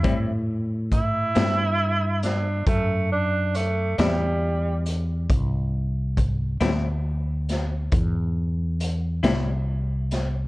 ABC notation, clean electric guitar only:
X:1
M:12/8
L:1/8
Q:3/8=46
K:Ador
V:1 name="Clean electric guitar"
[A,,G,CE] z2 [A,,G,CE] z4 z [A,,G,CE] z2 | z3 [A,,G,CE] z4 z [A,,G,CE] z2 |]